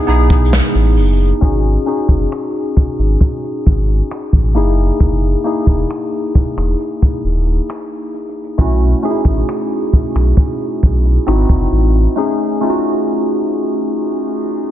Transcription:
0.00 0.07 B3 loud
0.00 0.08 D#4 medium
0.00 0.09 E4 medium
0.00 0.09 G#4 loud
0.07 0.61 B1 medium
0.07 1.34 B3 medium
0.07 1.34 D#4 medium
0.07 1.34 E4 medium
0.07 1.35 G#4 medium
0.30 kick medium
0.30 closed hi-hat soft
0.45 closed hi-hat medium
0.53 snare loud
0.60 closed hi-hat medium
0.75 0.99 A1 medium
0.75 closed hi-hat soft
0.97 1.33 F#1 loud
0.97 open hi-hat medium
1.41 1.78 G#1 loud
1.41 1.84 C#4 medium
1.41 1.84 D#4 medium
1.41 1.85 F#4 medium
1.41 1.85 G#4 medium
1.41 kick loud
1.41 closed hi-hat medium
1.64 closed hi-hat soft
1.86 3.55 C#4 medium
1.86 3.55 D#4 medium
1.86 3.56 F#4 medium
1.86 3.56 G#4 medium
1.86 closed hi-hat medium
2.09 2.27 F#1 medium
2.09 kick medium
2.09 closed hi-hat soft
2.32 finger snap loud
2.32 closed hi-hat medium
2.54 closed hi-hat medium
2.77 2.86 G#1 soft
2.77 kick medium
2.77 closed hi-hat medium
2.99 3.17 G#1 medium
2.99 closed hi-hat medium
3.21 kick medium
3.21 closed hi-hat medium
3.43 closed hi-hat medium
3.66 4.02 G#1 medium
3.66 kick medium
3.88 closed hi-hat medium
4.10 finger snap loud
4.10 closed hi-hat medium
4.33 4.57 A1 medium
4.33 kick medium
4.33 closed hi-hat soft
4.55 4.91 F#1 loud
4.55 5.39 A#3 medium
4.55 5.40 D#4 medium
4.55 5.40 E4 medium
4.55 5.40 G#4 loud
4.55 closed hi-hat medium
4.71 closed hi-hat medium
4.86 closed hi-hat medium
5.00 5.36 F#1 loud
5.00 kick loud
5.00 closed hi-hat medium
5.23 closed hi-hat soft
5.44 7.13 A#3 medium
5.44 7.13 D#4 medium
5.44 7.14 E4 medium
5.44 7.14 G#4 medium
5.44 closed hi-hat medium
5.67 5.85 E1 medium
5.67 kick medium
5.67 closed hi-hat soft
5.90 finger snap loud
5.90 closed hi-hat medium
6.13 closed hi-hat soft
6.35 6.44 E1 soft
6.35 kick medium
6.35 closed hi-hat medium
6.57 6.75 E1 medium
6.57 finger snap medium
6.57 closed hi-hat medium
6.80 closed hi-hat medium
7.02 kick medium
7.02 closed hi-hat medium
7.24 7.60 D#1 medium
7.46 closed hi-hat medium
7.69 finger snap loud
7.69 closed hi-hat medium
7.91 closed hi-hat soft
8.14 closed hi-hat medium
8.29 closed hi-hat medium
8.44 closed hi-hat medium
8.58 8.94 B1 loud
8.58 9.00 A3 medium
8.58 9.01 C#4 medium
8.58 9.01 E4 medium
8.58 9.01 F#4 medium
8.58 kick loud
8.58 closed hi-hat medium
8.81 closed hi-hat soft
9.03 10.71 A3 medium
9.03 10.71 C#4 medium
9.03 9.10 D#4 medium
9.03 10.72 G#4 loud
9.03 closed hi-hat medium
9.11 10.75 E4 medium
9.25 9.43 A1 medium
9.25 kick medium
9.25 closed hi-hat soft
9.49 finger snap loud
9.70 closed hi-hat soft
9.93 10.02 B1 soft
9.93 kick medium
9.93 closed hi-hat medium
10.15 10.33 B1 medium
10.15 finger snap medium
10.15 closed hi-hat medium
10.37 kick medium
10.37 closed hi-hat medium
10.60 closed hi-hat medium
10.83 11.18 B1 medium
10.83 kick medium
11.05 closed hi-hat medium
11.27 11.45 G#1 loud
11.27 12.11 C4 medium
11.27 12.11 D#4 medium
11.27 12.12 E4 medium
11.27 12.12 F#4 medium
11.27 finger snap loud
11.49 11.67 F#1 medium
11.49 kick medium
11.49 closed hi-hat soft
11.72 12.07 A1 loud
11.72 closed hi-hat medium
11.87 closed hi-hat medium
12.02 closed hi-hat medium
12.16 12.58 A3 medium
12.16 12.59 C#4 medium
12.16 12.59 D#4 medium
12.16 12.60 G#4 medium
12.61 14.29 A3 medium
12.61 14.30 C#4 medium
12.61 14.30 D#4 medium
12.61 12.69 F4 medium
12.70 14.34 F#4 loud

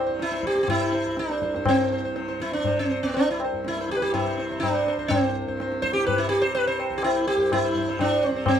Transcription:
0.00 1.05 C2 medium
0.00 1.55 G2 medium
0.00 0.09 C3 medium
0.06 0.58 C3 medium
0.06 0.30 C5 soft
0.20 0.46 E4 loud
0.20 tabla te medium
0.32 0.55 C5 soft
0.32 tabla te medium
0.43 0.62 G4 medium
0.43 tabla ke medium
0.56 2.05 C3 medium
0.56 tabla te medium
0.63 0.69 G4 medium
0.68 1.19 E4 loud
0.68 tabla na medium
0.68 tabla ge medium
0.81 0.93 C5 soft
0.92 1.17 C5 soft
0.92 tabla te medium
1.06 3.02 C2 medium
1.17 1.65 D4 medium
1.17 tabla te medium
1.29 1.41 C5 soft
1.29 tabla te medium
1.42 1.55 C5 soft
1.42 tabla ke medium
1.55 3.52 G2 medium
1.55 1.78 C5 soft
1.55 tabla te medium
1.66 2.44 C4 loud
1.66 tabla na loud
1.66 tabla ge loud
1.79 1.91 C5 soft
1.92 2.04 C5 soft
2.05 2.56 C3 medium
2.05 2.14 C5 soft
2.16 2.27 C5 soft
2.16 tabla te medium
2.28 2.52 C5 soft
2.28 tabla te medium
2.40 2.53 E4 medium
2.40 tabla ke medium
2.52 2.77 D4 medium
2.52 tabla te medium
2.56 4.01 C3 medium
2.64 2.90 C5 soft
2.64 tabla tin medium
2.64 tabla ge medium
2.79 3.03 C4 medium
2.91 3.14 C5 soft
3.02 4.97 C2 medium
3.02 3.16 B3 medium
3.14 3.29 D4 medium
3.14 tabla tin medium
3.31 3.41 E4 medium
3.40 tabla na medium
3.44 3.65 C5 soft
3.52 5.45 G2 medium
3.65 3.91 E4 medium
3.65 tabla te medium
3.77 tabla te medium
3.81 3.96 C5 soft
3.89 3.96 G4 medium
3.89 tabla ke medium
3.97 4.01 B4 medium
4.01 4.50 C3 medium
4.01 4.13 G4 medium
4.01 tabla te medium
4.14 4.59 E4 medium
4.14 tabla na medium
4.14 tabla ge medium
4.28 4.38 C5 soft
4.38 4.50 C5 soft
4.38 tabla te medium
4.50 5.93 C3 medium
4.50 4.73 C5 soft
4.60 5.11 D4 medium
4.60 tabla na medium
4.60 tabla ge medium
4.75 4.87 C5 soft
4.87 4.98 C5 soft
4.87 tabla te medium
4.97 6.89 C2 medium
4.97 5.21 C5 soft
5.08 5.84 C4 medium
5.08 tabla na loud
5.08 tabla ge medium
5.24 5.46 C5 soft
5.46 7.36 G2 medium
5.46 5.60 C5 soft
5.60 5.81 C5 soft
5.60 tabla te medium
5.72 tabla te medium
5.82 5.93 C5 loud
5.82 tabla ke medium
5.93 6.42 C3 medium
5.93 6.06 G4 medium
5.93 tabla te medium
6.07 6.20 B4 loud
6.07 tabla tin medium
6.07 tabla ge medium
6.18 6.28 E4 medium
6.29 6.43 G4 loud
6.42 7.82 C3 medium
6.42 6.54 C5 medium
6.55 6.67 B4 loud
6.55 tabla tin medium
6.67 6.78 C5 medium
6.80 7.02 C5 soft
6.80 tabla na medium
6.90 8.60 C2 medium
6.98 7.04 G4 medium
7.03 7.27 E4 medium
7.03 tabla na medium
7.16 7.38 C5 soft
7.27 7.50 G4 loud
7.27 tabla na medium
7.36 8.60 G2 medium
7.40 7.63 C5 soft
7.52 8.00 E4 loud
7.52 tabla na medium
7.52 tabla ge medium
7.65 7.76 C5 soft
7.75 7.88 C5 soft
7.75 tabla ge medium
7.82 8.31 C3 medium
7.89 8.11 C5 soft
7.99 8.29 D4 medium
7.99 tabla na medium
7.99 tabla ge medium
8.23 8.35 C5 soft
8.23 tabla te medium
8.29 8.60 C3 medium
8.29 8.45 C4 medium
8.36 8.58 C5 soft
8.46 8.60 C4 medium
8.46 tabla na loud
8.46 tabla ge loud

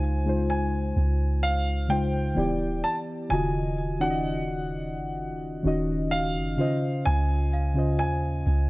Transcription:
0.00 0.93 C#2 loud
0.00 0.24 C#3 medium
0.00 0.26 G#3 medium
0.00 0.27 D#4 medium
0.00 0.28 F4 medium
0.00 0.29 C5 medium
0.00 2.04 F5 medium
0.00 0.48 G#5 loud
0.24 1.26 C#3 medium
0.24 1.27 G#3 medium
0.24 1.28 D#4 medium
0.24 1.28 F4 medium
0.29 1.29 C5 medium
0.50 1.39 G#5 medium
0.96 2.33 C#2 loud
1.43 1.87 F5 medium
1.88 2.36 C#3 medium
1.88 2.37 G#3 medium
1.88 2.37 D#4 medium
1.88 2.38 F4 medium
1.88 2.80 G5 medium
1.93 2.38 C5 medium
2.35 2.82 D1 loud
2.35 3.11 E3 medium
2.35 3.11 B3 medium
2.35 3.12 E4 medium
2.35 3.13 G4 medium
2.35 3.74 D5 medium
2.39 3.13 D5 medium
2.84 2.94 A5 medium
3.29 4.96 D#1 loud
3.29 3.74 C#3 medium
3.29 3.73 D#3 medium
3.29 3.74 F4 medium
3.29 3.75 F#4 medium
3.29 4.03 G#5 loud
3.33 3.75 D#5 medium
3.99 5.01 D#3 medium
3.99 5.02 C#4 medium
3.99 5.02 D#4 medium
3.99 5.03 F#4 medium
3.99 6.18 F#5 loud
4.03 4.09 D5 medium
4.10 5.07 D#5 medium
4.95 5.32 F#1 medium
5.30 5.64 D#1 medium
5.63 6.37 D#1 loud
5.63 6.51 D#3 medium
5.63 6.51 C#4 medium
5.63 6.52 D#4 medium
5.63 6.53 F#4 medium
5.68 6.53 D#5 loud
6.11 7.08 F5 medium
6.35 6.58 F#1 loud
6.57 7.52 C#3 medium
6.57 7.52 C#4 medium
6.57 7.53 F4 medium
6.57 7.53 C5 medium
6.61 7.54 D#5 medium
7.06 8.01 C#2 loud
7.06 7.97 G#5 loud
7.53 8.70 F5 medium
7.74 8.70 C#3 medium
7.74 8.70 C#4 medium
7.74 8.70 F4 medium
7.74 8.70 C5 medium
7.79 8.70 D#5 medium
7.99 8.44 D#2 loud
7.99 8.70 G#5 loud
8.46 8.70 C#2 loud

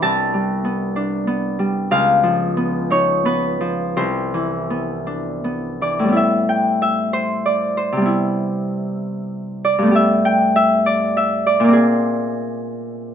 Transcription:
0.00 1.94 C2 medium
0.00 0.63 B3 medium
0.00 0.95 D4 medium
0.00 1.05 E4 soft
0.00 0.15 C5 medium
0.00 1.36 E5 medium
0.00 1.94 G5 medium
0.00 1.94 A5 medium
0.00 3.31 B5 loud
0.34 1.58 G3 soft
0.65 1.26 B3 soft
0.96 1.93 D4 medium
1.27 2.56 B3 medium
1.59 1.93 G3 soft
1.91 4.00 C#2 medium
1.91 4.00 F5 medium
2.23 3.59 F3 soft
2.57 3.24 B3 soft
2.90 4.00 D#4 soft
2.90 4.00 C#5 medium
3.25 4.69 B3 soft
3.25 7.16 B4 medium
3.61 4.00 F3 soft
3.97 6.19 C2 medium
3.97 7.12 C5 medium
4.34 5.80 E3 soft
4.70 5.43 B3 soft
5.07 6.18 D4 soft
5.44 6.07 B3 soft
5.81 6.19 E3 soft
5.81 6.19 D5 medium
5.99 8.03 A2 soft
6.04 7.96 G3 soft
6.08 8.00 B3 soft
6.08 8.04 E4 soft
6.17 6.81 E5 medium
6.49 10.24 G5 medium
6.82 9.94 E5 medium
7.13 7.76 C5 medium
7.46 7.99 D5 medium
7.77 9.97 C5 medium
7.92 9.89 C3 soft
7.97 11.73 G3 soft
8.02 9.85 B3 soft
8.02 11.78 E4 soft
9.65 10.85 D5 medium
9.78 11.71 G2 medium
9.78 11.73 A3 soft
9.87 11.75 B3 soft
9.91 11.78 G4 soft
9.95 10.55 E5 medium
10.25 11.79 G5 medium
10.56 11.16 E5 medium
10.86 11.45 D5 medium
11.17 11.79 E5 medium
11.47 13.14 D5 medium
11.60 13.14 A#2 medium
11.64 13.14 A#3 soft
11.68 13.14 C4 soft
11.73 13.14 G#4 soft

